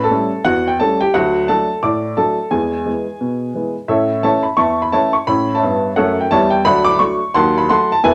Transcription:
0.00 0.12 A2 medium
0.00 0.12 C#4 medium
0.00 0.13 B4 medium
0.00 0.45 A5 medium
0.00 0.13 B5 medium
0.04 0.43 A4 medium
0.11 0.30 G3 soft
0.11 0.30 A3 medium
0.11 0.30 C#4 medium
0.45 0.74 E2 medium
0.45 0.67 F#4 medium
0.45 0.68 F#5 loud
0.68 0.79 G5 medium
0.80 0.99 G3 soft
0.80 0.99 A3 soft
0.80 0.99 C#4 medium
0.80 0.99 A4 medium
0.80 1.00 A5 medium
1.01 1.14 G4 medium
1.01 1.15 G5 medium
1.14 1.44 D2 medium
1.14 1.35 F#3 medium
1.14 1.47 F#4 medium
1.14 1.49 F#5 loud
1.48 1.68 F#3 soft
1.48 1.68 A3 soft
1.48 1.68 D4 soft
1.48 1.81 A4 medium
1.48 1.83 A5 medium
1.83 2.12 A2 medium
1.83 2.15 D5 medium
1.83 2.17 D6 medium
2.17 2.36 F#3 soft
2.17 2.37 A3 soft
2.17 2.37 D4 soft
2.17 2.50 A4 medium
2.17 2.52 A5 medium
2.51 2.81 E2 medium
2.51 2.72 G#3 soft
2.51 3.71 G#4 medium
2.51 3.75 G#5 medium
2.85 3.05 E3 soft
2.85 3.05 G#3 soft
2.85 3.06 B3 soft
3.21 3.50 B2 medium
3.55 3.74 E3 soft
3.55 3.74 G#3 soft
3.55 3.74 B3 soft
3.88 4.18 A2 medium
3.88 4.09 C#4 soft
3.88 4.22 A4 medium
3.88 4.22 C#5 medium
3.88 4.23 E5 medium
4.23 4.42 E3 soft
4.23 4.43 A3 soft
4.23 4.43 C#4 soft
4.23 4.43 C#5 medium
4.23 4.43 E5 medium
4.23 4.44 A5 medium
4.43 4.58 B5 medium
4.57 4.87 E2 medium
4.57 4.80 E5 medium
4.57 4.80 A5 medium
4.57 4.81 C#6 medium
4.82 4.93 B5 medium
4.92 5.12 E3 soft
4.92 5.12 A3 soft
4.92 5.13 C#4 soft
4.92 5.12 C#5 medium
4.92 5.12 E5 medium
4.92 5.13 A5 medium
5.13 5.28 C#6 medium
5.27 5.55 A2 medium
5.27 5.56 C#4 medium
5.27 5.55 B5 loud
5.55 5.94 C#5 medium
5.55 5.94 E5 medium
5.55 5.96 A5 medium
5.63 5.90 G2 medium
5.63 5.91 B3 medium
5.96 6.24 F#2 medium
5.96 6.25 A3 medium
5.96 6.18 A4 medium
5.96 6.18 C#5 medium
5.96 6.19 F#5 medium
6.21 6.32 G5 medium
6.31 6.59 E2 medium
6.31 6.60 G3 medium
6.31 6.50 C#5 medium
6.31 6.50 E5 medium
6.31 6.51 A5 loud
6.50 6.65 G5 medium
6.65 6.95 D2 medium
6.65 6.86 F#3 medium
6.65 6.85 D5 medium
6.65 6.85 F#5 medium
6.65 6.85 B5 loud
6.84 6.99 D6 loud
6.99 7.18 F#3 soft
6.99 7.19 A3 soft
6.99 7.19 D4 soft
6.99 7.34 C#6 medium
7.34 7.64 D#2 medium
7.34 7.55 F#3 medium
7.34 7.57 F#5 medium
7.34 7.56 A5 medium
7.34 7.57 C6 loud
7.58 7.69 B5 medium
7.69 7.88 F#3 soft
7.69 7.89 A3 medium
7.69 7.89 A4 soft
7.69 7.91 F#5 medium
7.69 7.90 A5 medium
7.69 7.92 C6 loud
7.92 8.04 A5 loud
8.04 8.14 E1 medium
8.04 8.14 E2 medium
8.04 8.14 B4 medium
8.04 8.14 E5 medium
8.04 8.14 G#5 loud

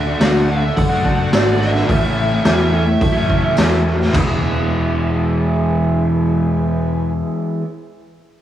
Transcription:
0.00 0.14 D2 loud
0.00 0.18 D3 loud
0.00 0.11 F#4 medium
0.00 0.11 A4 medium
0.00 0.11 D5 medium
0.00 0.22 E5 loud
0.06 0.20 A3 medium
0.06 0.21 D4 medium
0.06 0.22 F#4 medium
0.20 0.70 D2 loud
0.20 0.47 D3 loud
0.20 0.49 A3 loud
0.20 0.49 D4 loud
0.20 0.39 F#4 medium
0.20 0.50 F#4 loud
0.20 0.39 A4 medium
0.20 0.39 D5 medium
0.20 0.61 F#5 loud
0.20 snare loud
0.20 open hi-hat medium
0.20 tambourine medium
0.48 0.91 D3 medium
0.48 0.62 A3 medium
0.48 0.62 D4 medium
0.48 0.67 F#4 medium
0.48 0.62 F#4 medium
0.48 0.67 A4 medium
0.48 0.67 D5 loud
0.61 0.72 E5 loud
0.61 muted overdriven electric guitar stroke medium
0.76 1.26 F#2 loud
0.76 0.95 F#4 loud
0.76 0.95 A4 medium
0.76 0.95 D5 loud
0.76 1.29 F#5 loud
0.76 kick loud
0.76 open hi-hat medium
0.89 1.03 A3 medium
0.89 1.05 D4 medium
0.89 1.06 F#4 medium
1.03 1.29 D3 medium
1.03 1.19 A3 medium
1.03 1.18 D4 medium
1.03 1.23 F#4 medium
1.03 1.16 F#4 medium
1.03 1.23 A4 medium
1.03 1.23 D5 medium
1.03 kick medium
1.17 1.31 A3 medium
1.17 1.32 D4 medium
1.17 1.33 F#4 medium
1.31 1.82 G#1 loud
1.31 1.58 D3 loud
1.31 1.59 A3 medium
1.31 1.60 D4 medium
1.31 1.51 F#4 medium
1.31 1.61 F#4 loud
1.31 1.51 A4 medium
1.31 1.60 D5 medium
1.31 1.51 D5 medium
1.31 snare loud
1.31 open hi-hat medium
1.31 tambourine loud
1.59 1.86 D3 medium
1.59 1.73 A3 medium
1.59 1.72 D4 medium
1.59 1.78 F#4 medium
1.59 1.72 F#4 medium
1.59 1.79 A4 medium
1.59 1.79 D5 medium
1.59 3.53 E5 loud
1.59 snare soft
1.74 muted overdriven electric guitar stroke medium
1.74 snare soft
1.87 2.38 A1 medium
1.87 2.42 A2 medium
1.87 2.43 E3 medium
1.87 2.32 A3 loud
1.87 2.30 C#4 loud
1.87 2.06 E4 loud
1.87 2.28 E4 loud
1.87 2.06 A4 medium
1.87 2.07 C#5 loud
1.87 kick loud
1.87 open hi-hat medium
2.16 2.34 E4 medium
2.16 2.35 A4 medium
2.16 2.35 C#5 medium
2.29 2.44 A3 medium
2.29 2.45 C#4 medium
2.29 2.46 E4 medium
2.43 2.94 E2 loud
2.43 3.00 A2 medium
2.43 2.69 E3 loud
2.43 2.71 A3 medium
2.43 2.72 C#4 loud
2.43 2.63 E4 medium
2.43 2.72 E4 loud
2.43 2.63 A4 medium
2.43 2.64 C#5 loud
2.43 snare loud
2.43 open hi-hat medium
2.43 tambourine loud
2.70 2.85 E3 medium
2.70 2.85 A3 medium
2.70 2.85 C#4 loud
2.70 2.84 E4 medium
2.70 2.91 E4 loud
2.70 2.91 A4 medium
2.70 2.91 C#5 loud
2.86 muted overdriven electric guitar stroke medium
3.00 3.50 F#2 loud
3.00 3.19 E4 loud
3.00 3.19 A4 loud
3.00 3.19 C#5 loud
3.00 kick loud
3.00 open hi-hat medium
3.13 3.27 A3 medium
3.13 3.28 C#4 medium
3.13 3.28 E4 medium
3.26 3.55 E3 medium
3.26 3.43 A3 medium
3.26 3.42 C#4 medium
3.26 3.46 E4 medium
3.26 3.40 E4 medium
3.26 3.47 A4 medium
3.26 3.47 C#5 loud
3.26 kick medium
3.41 3.56 A3 medium
3.41 3.57 C#4 medium
3.41 3.58 E4 medium
3.55 4.07 E2 medium
3.55 4.11 A2 medium
3.55 3.83 E3 medium
3.55 3.84 A3 loud
3.55 3.84 C#4 loud
3.55 3.74 E4 medium
3.55 3.86 E4 loud
3.55 3.74 A4 medium
3.55 3.75 C#5 medium
3.55 snare loud
3.55 open hi-hat medium
3.55 tambourine loud
3.84 3.98 E3 medium
3.84 3.98 A3 medium
3.84 3.98 C#4 medium
3.84 4.03 E4 medium
3.84 3.98 E4 medium
3.84 4.03 A4 medium
3.84 4.03 C#5 medium
3.84 snare soft
3.99 muted overdriven electric guitar stroke medium
3.99 snare soft
4.11 7.21 E1 medium
4.11 7.61 E3 loud
4.11 7.63 G#3 loud
4.11 7.64 B3 loud
4.11 7.13 E4 medium
4.11 7.13 G#4 medium
4.11 7.13 B4 loud
4.11 kick loud
4.11 floor tom loud
4.11 tambourine medium
4.11 crash medium
4.15 7.65 E4 loud

